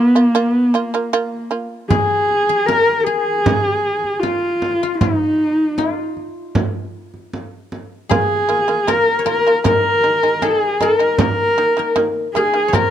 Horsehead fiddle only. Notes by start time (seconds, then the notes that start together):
Already playing: A#3
0.02 B3
0.25 A#3
0.49 B3
0.71 A#3
1.90 G#4
2.66 A#4
3.00 A#4
3.04 G#4
4.19 F4
4.98 D#4
8.13 G#4
8.90 A#4
9.29 A#4
9.67 A#4
10.45 G#4
10.82 A#4
11.21 A#4
12.35 G#4
12.74 A#4